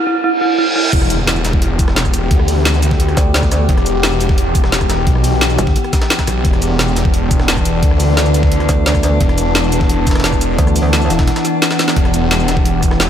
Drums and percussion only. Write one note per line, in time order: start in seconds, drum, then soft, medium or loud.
0.93 kick loud
0.93 closed hi-hat medium
0.93 crash loud
1.02 cross-stick soft
1.02 closed hi-hat soft
1.10 closed hi-hat loud
1.10 closed hi-hat medium
1.10 shaker medium
1.27 snare loud
1.27 closed hi-hat medium
1.36 shaker soft
1.45 snare loud
1.45 closed hi-hat loud
1.45 closed hi-hat medium
1.45 shaker medium
1.53 kick loud
1.62 closed hi-hat medium
1.79 kick loud
1.79 closed hi-hat loud
1.79 closed hi-hat medium
1.79 shaker medium
1.88 cross-stick soft
1.88 snare medium
1.96 snare loud
1.96 closed hi-hat medium
2.05 kick medium
2.05 cross-stick soft
2.05 shaker soft
2.14 closed hi-hat loud
2.14 closed hi-hat medium
2.14 shaker medium
2.31 kick loud
2.31 closed hi-hat medium
2.40 cross-stick soft
2.48 closed hi-hat medium
2.48 open hi-hat medium
2.48 shaker medium
2.65 snare loud
2.65 closed hi-hat medium
2.74 closed hi-hat soft
2.74 shaker soft
2.83 closed hi-hat loud
2.83 closed hi-hat medium
2.83 shaker medium
2.91 kick loud
2.91 snare medium
3.00 closed hi-hat medium
3.08 cross-stick soft
3.08 closed hi-hat soft
3.17 kick loud
3.17 snare soft
3.17 closed hi-hat medium
3.17 shaker medium
3.34 snare loud
3.34 closed hi-hat medium
3.43 kick medium
3.43 cross-stick soft
3.43 snare soft
3.43 shaker soft
3.52 cross-stick soft
3.52 snare medium
3.52 closed hi-hat medium
3.52 shaker medium
3.69 kick loud
3.69 closed hi-hat medium
3.77 cross-stick soft
3.77 closed hi-hat soft
3.86 closed hi-hat medium
3.86 shaker medium
4.03 snare loud
4.03 closed hi-hat medium
4.12 shaker soft
4.21 closed hi-hat medium
4.21 shaker medium
4.29 kick loud
4.29 snare soft
4.38 closed hi-hat medium
4.55 kick loud
4.55 closed hi-hat medium
4.55 shaker medium
4.64 cross-stick soft
4.64 snare medium
4.72 snare loud
4.72 closed hi-hat medium
4.81 kick medium
4.81 cross-stick soft
4.81 shaker soft
4.90 snare loud
4.90 closed hi-hat medium
4.90 shaker medium
5.07 kick loud
5.07 closed hi-hat medium
5.15 cross-stick soft
5.24 closed hi-hat medium
5.24 open hi-hat medium
5.24 shaker medium
5.41 snare loud
5.41 closed hi-hat medium
5.50 closed hi-hat soft
5.50 shaker soft
5.58 closed hi-hat medium
5.58 shaker medium
5.67 kick loud
5.67 snare soft
5.76 closed hi-hat medium
5.84 cross-stick soft
5.84 closed hi-hat soft
5.93 kick loud
5.93 snare loud
5.93 snare soft
5.93 closed hi-hat medium
5.93 shaker medium
6.02 snare loud
6.02 closed hi-hat medium
6.10 snare loud
6.10 closed hi-hat medium
6.19 kick medium
6.19 cross-stick soft
6.19 snare loud
6.19 closed hi-hat medium
6.19 shaker soft
6.27 cross-stick soft
6.27 snare medium
6.27 closed hi-hat medium
6.27 shaker medium
6.45 kick loud
6.45 closed hi-hat medium
6.53 cross-stick soft
6.53 closed hi-hat soft
6.62 closed hi-hat medium
6.62 shaker medium
6.79 snare loud
6.79 closed hi-hat medium
6.88 shaker soft
6.96 snare loud
6.96 closed hi-hat medium
6.96 shaker medium
7.05 kick loud
7.14 closed hi-hat medium
7.31 kick loud
7.31 closed hi-hat medium
7.31 shaker medium
7.40 cross-stick soft
7.40 snare medium
7.48 snare loud
7.48 closed hi-hat medium
7.57 kick medium
7.57 cross-stick soft
7.57 shaker soft
7.65 closed hi-hat medium
7.65 shaker medium
7.83 kick loud
7.83 closed hi-hat medium
7.91 cross-stick soft
8.00 closed hi-hat medium
8.00 open hi-hat medium
8.00 shaker medium
8.17 snare loud
8.17 closed hi-hat medium
8.26 closed hi-hat soft
8.26 shaker soft
8.34 closed hi-hat loud
8.34 closed hi-hat medium
8.34 shaker medium
8.43 kick loud
8.43 snare soft
8.52 closed hi-hat medium
8.60 cross-stick soft
8.60 closed hi-hat soft
8.69 kick loud
8.69 snare soft
8.69 closed hi-hat medium
8.69 shaker medium
8.86 snare loud
8.86 closed hi-hat medium
8.95 kick medium
8.95 cross-stick soft
8.95 snare soft
8.95 shaker soft
9.03 cross-stick soft
9.03 snare medium
9.03 closed hi-hat medium
9.03 shaker medium
9.21 kick loud
9.21 closed hi-hat medium
9.29 cross-stick soft
9.29 closed hi-hat soft
9.38 closed hi-hat loud
9.38 closed hi-hat medium
9.38 shaker medium
9.55 snare loud
9.55 closed hi-hat medium
9.64 shaker soft
9.72 closed hi-hat loud
9.72 closed hi-hat medium
9.72 shaker medium
9.81 kick loud
9.81 snare soft
9.90 closed hi-hat medium
10.07 kick loud
10.07 snare medium
10.07 closed hi-hat medium
10.07 shaker medium
10.11 snare medium
10.11 closed hi-hat medium
10.15 cross-stick soft
10.15 snare medium
10.15 closed hi-hat medium
10.20 snare medium
10.20 closed hi-hat medium
10.24 snare loud
10.24 closed hi-hat medium
10.33 kick medium
10.33 cross-stick soft
10.33 shaker soft
10.41 closed hi-hat loud
10.41 closed hi-hat medium
10.41 shaker medium
10.58 kick loud
10.58 closed hi-hat medium
10.67 cross-stick soft
10.67 shaker soft
10.76 closed hi-hat medium
10.76 open hi-hat medium
10.76 shaker medium
10.93 snare loud
10.93 closed hi-hat medium
11.02 closed hi-hat soft
11.02 shaker soft
11.10 snare loud
11.10 closed hi-hat loud
11.10 closed hi-hat medium
11.10 shaker medium
11.19 kick loud
11.19 snare loud
11.19 closed hi-hat medium
11.27 snare loud
11.27 closed hi-hat medium
11.36 cross-stick soft
11.36 snare loud
11.36 closed hi-hat medium
11.36 shaker soft
11.45 snare soft
11.45 closed hi-hat medium
11.45 shaker medium
11.62 snare loud
11.62 closed hi-hat medium
11.71 snare loud
11.71 snare medium
11.71 closed hi-hat medium
11.71 shaker soft
11.79 snare loud
11.79 snare medium
11.79 closed hi-hat medium
11.79 closed hi-hat loud
11.79 shaker medium
11.88 snare loud
11.88 snare medium
11.88 closed hi-hat medium
11.96 kick loud
11.96 closed hi-hat medium
12.05 cross-stick soft
12.05 closed hi-hat soft
12.14 closed hi-hat medium
12.14 shaker medium
12.31 snare loud
12.31 closed hi-hat medium
12.40 shaker soft
12.48 snare loud
12.48 closed hi-hat medium
12.48 closed hi-hat loud
12.48 shaker medium
12.57 kick loud
12.65 closed hi-hat medium
12.83 kick loud
12.83 closed hi-hat medium
12.83 closed hi-hat loud
12.83 shaker medium
12.91 cross-stick medium
12.91 snare medium
13.00 snare loud
13.00 closed hi-hat medium